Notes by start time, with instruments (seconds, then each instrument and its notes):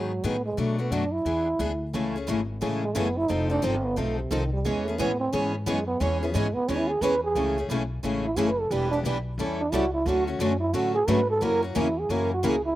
Already playing: upright bass G#2, steel-string acoustic guitar D#3 F#3 B3 D#4 G#4, trombone F#3
0.24 upright bass A2, steel-string acoustic guitar D#3 F#3 B3 D#4 G#4, trombone B3
0.46 trombone G#3
0.57 steel-string acoustic guitar B2 F#3 A3 D4 F#4, upright bass B2, trombone A3
0.79 steel-string acoustic guitar A3 D4 F#4, trombone B3
0.91 upright bass F#2, steel-string acoustic guitar B2 F#3 A3 D4 F#4, trombone D4
1.12 trombone E4
1.25 upright bass E2, steel-string acoustic guitar E3 B3 D4 G#4
1.59 upright bass D2, steel-string acoustic guitar E3 B3 D4 G#4
1.94 upright bass C#2, steel-string acoustic guitar C#3 E3 G#3 A3 C#4 E4 G#4 A4
2.16 steel-string acoustic guitar A3 C#4 G#4
2.27 upright bass G#1, steel-string acoustic guitar C#3 E3 G#3 A3 C#4 E4 G#4 A4
2.62 upright bass A1, steel-string acoustic guitar C#3 E3 G#3 A3 C#4 E4 G#4 A4
2.84 trombone G#3
2.95 upright bass F#1, steel-string acoustic guitar C#3 E3 G#3 A3 C#4 E4 G#4 A4, trombone B3
3.18 trombone E4
3.29 upright bass F1, steel-string acoustic guitar F3 C4 D#4 A4, trombone D#4
3.50 steel-string acoustic guitar C4 D#4 A4, trombone D4
3.62 upright bass G1, steel-string acoustic guitar F3 C4 D#4 A4, trombone C4
3.85 trombone B3
3.96 upright bass B1, steel-string acoustic guitar F3 C4 D#4 A4, trombone A3
4.18 trombone C3
4.31 upright bass C2, trombone D#3, steel-string acoustic guitar F3 C4 D#4 A4
4.53 trombone G3
4.65 upright bass E2, steel-string acoustic guitar E3 G#3 B3 C#4 G#4 C#5, trombone G#3
4.86 trombone A3, steel-string acoustic guitar B3 C#4 G#4
4.99 upright bass A2, steel-string acoustic guitar E3 G#3 B3 C#4 G#4 C#5, trombone B3
5.20 trombone C4
5.33 upright bass G#2, steel-string acoustic guitar E3 G#3 B3 C#4 G#4 C#5, trombone C#4
5.56 trombone E3
5.66 upright bass F#2, steel-string acoustic guitar E3 G#3 B3 C#4 G#4 C#5, trombone G#3
5.87 trombone B3
6.00 upright bass E2, steel-string acoustic guitar E3 G#3 B3 C#4 G#4 C#5, trombone C#4
6.22 trombone E3, steel-string acoustic guitar B3 C#4 G#4
6.34 upright bass G#2, steel-string acoustic guitar E3 G#3 B3 C#4 G#4 C#5, trombone G#3
6.54 trombone B3, muted upright bass stroke
6.68 upright bass D#2, steel-string acoustic guitar E3 G#3 B3 C#4 G#4 C#5, trombone C#4
6.78 trombone E4
6.89 trombone G#4
7.01 upright bass E2, steel-string acoustic guitar E3 G#3 B3 C#4 G#4 C#5, trombone B4
7.24 trombone G#4
7.35 upright bass C#2, steel-string acoustic guitar C#3 E3 G#3 A3 C#4 E4 G#4 A4
7.58 steel-string acoustic guitar A3 C#4 G#4
7.69 upright bass B1, steel-string acoustic guitar C#3 E3 G#3 A3 C#4 E4 G#4 A4
8.03 upright bass A1, steel-string acoustic guitar C#3 E3 G#3 A3 C#4 E4 G#4 A4
8.24 trombone E4
8.37 upright bass F#1, steel-string acoustic guitar C#3 E3 G#3 A3 C#4 E4 G#4 A4, trombone G#4
8.49 trombone B4
8.61 trombone A4
8.71 upright bass E1, steel-string acoustic guitar E3 G3 B3 D4 E4 G4 B4, trombone G4
8.91 steel-string acoustic guitar B3 D4 G4, trombone D4
9.04 upright bass B1, steel-string acoustic guitar E3 G3 B3 D4 E4 G4 B4
9.38 upright bass E2, steel-string acoustic guitar E3 G3 C#4 E4 A4
9.60 trombone D4
9.72 upright bass C#2, steel-string acoustic guitar E3 G3 C#4 E4 A4, trombone F#4
9.94 trombone E4
10.06 upright bass D2, steel-string acoustic guitar D3 F#3 A3 C#4 F#4 A4, trombone F#4
10.27 trombone A3, steel-string acoustic guitar A3 C#4 F#4
10.39 upright bass F#2, steel-string acoustic guitar D3 F#3 A3 C#4 F#4 A4, trombone C#4
10.60 trombone E4
10.73 upright bass A2, steel-string acoustic guitar D3 F#3 A3 C#4 F#4 A4, trombone F#4
10.95 trombone G#4
11.07 upright bass G#2, steel-string acoustic guitar D3 F#3 A3 C#4 F#4 A4, trombone B4
11.30 trombone A4
11.41 upright bass F#2, steel-string acoustic guitar C#3 E3 F#3 A#3 C#4 E4 F#4 A#4, trombone A#4
11.63 steel-string acoustic guitar A#3 C#4 F#4, trombone C#4
11.75 upright bass E2, steel-string acoustic guitar C#3 E3 F#3 A#3 C#4 E4 F#4 A#4, trombone E4
12.00 trombone G#4
12.09 upright bass F#2, steel-string acoustic guitar C#3 E3 F#3 A#3 C#4 E4 F#4 A#4, trombone A#4
12.34 trombone F#4
12.43 upright bass C#2, steel-string acoustic guitar C#3 E3 F#3 A#3 C#4 E4 F#4 A#4
12.48 trombone G#4
12.65 trombone E4